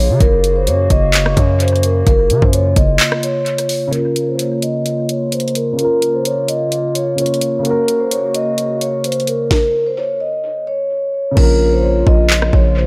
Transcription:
0.00 0.11 A#1 loud
0.00 3.89 C#3 medium
0.00 0.19 A#3 medium
0.00 0.17 F4 medium
0.00 0.17 C#5 medium
0.10 0.20 C#3 loud
0.20 0.69 F#1 loud
0.20 3.89 A#3 medium
0.20 2.05 F#4 medium
0.20 0.54 A#4 loud
0.20 kick loud
0.20 closed hi-hat medium
0.44 closed hi-hat medium
0.56 0.66 C5 medium
0.67 0.89 F#2 loud
0.67 0.89 C#5 medium
0.67 closed hi-hat medium
0.90 1.35 F#1 loud
0.90 1.34 D#5 medium
0.90 kick loud
0.90 closed hi-hat medium
1.14 clap loud
1.14 closed hi-hat medium
1.26 cross-stick medium
1.37 2.04 F#2 loud
1.37 1.58 C#5 medium
1.37 kick medium
1.37 closed hi-hat medium
1.60 1.82 C5 medium
1.60 closed hi-hat medium
1.68 closed hi-hat medium
1.76 closed hi-hat soft
1.83 2.05 A#4 medium
1.83 closed hi-hat medium
2.07 2.31 F#1 loud
2.07 3.91 F4 medium
2.07 2.40 A#4 loud
2.07 kick loud
2.07 closed hi-hat medium
2.30 2.42 C#3 loud
2.30 closed hi-hat medium
2.42 2.75 F#2 loud
2.42 2.52 C5 medium
2.42 kick loud
2.53 2.75 C#5 medium
2.53 closed hi-hat medium
2.76 2.99 F#1 loud
2.76 3.20 D#5 medium
2.76 kick loud
2.76 closed hi-hat medium
3.00 clap loud
3.00 closed hi-hat medium
3.12 cross-stick loud
3.23 3.89 C#5 medium
3.23 closed hi-hat medium
3.46 closed hi-hat soft
3.58 closed hi-hat medium
3.69 open hi-hat medium
3.88 5.71 C#3 medium
3.88 5.74 A#3 medium
3.93 7.61 C#3 medium
3.93 5.77 A#3 medium
3.93 7.61 F4 medium
3.93 5.76 F4 medium
3.93 4.26 A#4 loud
3.93 closed hi-hat medium
3.99 5.78 A#4 medium
4.16 closed hi-hat medium
4.28 4.38 C5 medium
4.38 4.60 C#5 medium
4.38 closed hi-hat medium
4.62 5.06 D#5 medium
4.62 closed hi-hat medium
4.86 closed hi-hat medium
5.09 5.30 C#5 medium
5.09 closed hi-hat medium
5.32 5.54 C5 medium
5.32 closed hi-hat medium
5.40 closed hi-hat medium
5.48 closed hi-hat soft
5.55 5.77 A#4 medium
5.55 closed hi-hat medium
5.73 7.13 C#3 medium
5.73 7.14 A#3 medium
5.79 7.63 A#3 medium
5.79 7.16 F4 medium
5.79 6.12 A#4 medium
5.79 closed hi-hat medium
5.84 7.18 A#4 medium
6.02 closed hi-hat medium
6.14 6.24 C5 medium
6.25 6.47 C#5 medium
6.25 closed hi-hat medium
6.48 6.92 D#5 medium
6.48 closed hi-hat medium
6.72 closed hi-hat medium
6.95 7.61 C#5 medium
6.95 closed hi-hat medium
7.16 7.58 C#3 medium
7.16 7.61 A#3 soft
7.16 7.65 F4 soft
7.16 closed hi-hat medium
7.21 7.66 C#5 medium
7.26 closed hi-hat medium
7.34 closed hi-hat soft
7.41 closed hi-hat medium
7.59 9.44 C#3 medium
7.59 9.46 A#3 medium
7.64 9.49 C#3 medium
7.64 9.49 A#3 medium
7.64 9.49 F#4 medium
7.64 9.48 F#4 medium
7.64 7.98 A#4 loud
7.64 closed hi-hat medium
7.70 9.50 A#4 medium
7.88 closed hi-hat medium
8.00 8.10 C5 medium
8.11 8.33 C#5 medium
8.11 closed hi-hat medium
8.35 8.78 D#5 medium
8.35 closed hi-hat medium
8.58 closed hi-hat medium
8.81 9.03 C#5 medium
8.81 closed hi-hat medium
9.04 9.26 C5 medium
9.04 closed hi-hat medium
9.12 closed hi-hat medium
9.20 closed hi-hat soft
9.27 9.49 A#4 medium
9.27 closed hi-hat medium
9.51 9.85 A#4 loud
9.51 kick loud
9.51 snare medium
9.86 9.96 C5 medium
9.97 10.19 C#5 medium
10.20 10.64 D#5 medium
10.67 11.33 C#5 medium
11.31 12.87 C#3 medium
11.31 12.87 A#3 medium
11.37 12.04 A#1 loud
11.37 12.87 C#3 medium
11.37 12.87 A#3 medium
11.37 12.87 F4 medium
11.37 11.70 A#4 loud
11.37 kick loud
11.37 crash medium
11.43 12.87 A#4 medium
11.73 11.83 C5 medium
11.83 12.04 C#5 medium
12.07 12.51 A#1 loud
12.07 12.50 D#5 medium
12.07 kick loud
12.30 clap loud
12.42 cross-stick medium
12.53 12.87 A#1 loud
12.53 12.75 C#5 medium
12.53 kick medium
12.77 12.87 C5 medium

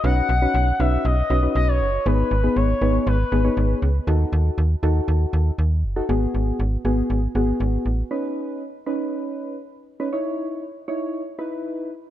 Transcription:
0.04 0.22 B1 loud
0.04 0.30 C#4 medium
0.04 0.30 D#4 medium
0.04 0.30 F#4 medium
0.04 0.30 B4 medium
0.04 0.81 F#5 loud
0.29 0.47 B1 loud
0.42 0.68 C#4 medium
0.42 0.68 D#4 medium
0.42 0.68 F#4 medium
0.42 0.68 B4 medium
0.54 0.72 B1 loud
0.80 0.97 B1 loud
0.80 1.14 C#4 medium
0.80 1.14 D#4 medium
0.80 1.14 F#4 medium
0.80 1.14 B4 medium
0.80 1.07 E5 loud
1.05 1.23 B1 loud
1.05 1.55 D#5 loud
1.30 1.48 B1 loud
1.30 1.39 C#4 medium
1.30 1.39 D#4 medium
1.30 1.39 F#4 medium
1.30 1.39 B4 medium
1.43 1.86 C#4 medium
1.43 1.86 D#4 medium
1.43 1.86 F#4 medium
1.43 1.86 B4 medium
1.55 1.82 B1 loud
1.55 1.70 D#5 medium
1.68 2.07 C#5 loud
1.81 1.98 F#1 medium
2.06 2.23 G#1 loud
2.06 2.32 B3 medium
2.06 2.32 D#4 medium
2.06 2.32 G#4 medium
2.06 2.32 B4 medium
2.06 2.58 B4 loud
2.31 2.49 G#1 loud
2.43 2.70 B3 medium
2.43 2.69 D#4 medium
2.43 2.69 G#4 medium
2.43 2.70 B4 medium
2.56 2.74 G#1 loud
2.56 3.06 C#5 loud
2.81 2.99 G#1 loud
2.81 3.16 B3 medium
2.81 3.16 D#4 medium
2.81 3.16 G#4 medium
2.81 3.16 B4 medium
3.07 3.24 G#1 loud
3.07 3.78 B4 medium
3.32 3.50 G#1 loud
3.32 3.41 B3 medium
3.32 3.41 D#4 medium
3.32 3.41 G#4 medium
3.32 3.41 B4 medium
3.44 3.88 B3 medium
3.44 3.88 D#4 medium
3.44 3.88 G#4 medium
3.44 3.88 C#5 medium
3.57 3.75 G#1 loud
3.82 4.00 C#2 medium
4.07 4.25 D#2 loud
4.07 4.59 D#4 medium
4.07 4.59 F#4 medium
4.07 4.59 A4 medium
4.33 4.50 D#2 loud
4.58 4.75 D#2 loud
4.83 5.01 D#2 loud
4.83 5.52 D#4 medium
4.83 5.52 F#4 medium
4.83 5.52 A4 loud
5.08 5.26 D#2 loud
5.33 5.51 D#2 loud
5.58 5.85 D#2 loud
5.84 6.02 F#1 medium
5.96 6.05 D#4 medium
5.96 6.05 F#4 medium
5.96 6.05 A4 medium
6.09 6.27 G#1 loud
6.09 6.61 B3 medium
6.09 6.61 F#4 medium
6.09 6.61 G#4 loud
6.34 6.52 G#1 medium
6.59 6.77 G#1 loud
6.85 7.02 G#1 loud
6.85 7.19 B3 medium
6.85 7.19 F#4 medium
6.85 7.19 G#4 loud
7.10 7.28 G#1 loud
7.35 7.53 G#1 loud
7.35 7.87 B3 medium
7.35 7.87 F#4 medium
7.35 7.87 G#4 loud
7.60 7.78 G#1 loud
7.86 8.03 A1 medium
8.11 8.63 C#4 medium
8.11 8.63 D#4 medium
8.11 8.63 B4 medium
8.86 9.56 C#4 medium
8.86 9.56 D#4 medium
8.86 9.56 B4 medium
10.00 10.08 C#4 medium
10.00 10.08 D#4 medium
10.00 10.08 B4 medium
10.13 10.64 D#4 medium
10.13 10.64 E4 medium
10.13 10.64 C#5 medium
10.88 11.23 D#4 medium
10.88 11.23 E4 medium
10.88 11.23 C#5 medium
11.39 11.90 D#4 medium
11.39 11.90 E4 medium
11.39 11.91 B4 medium

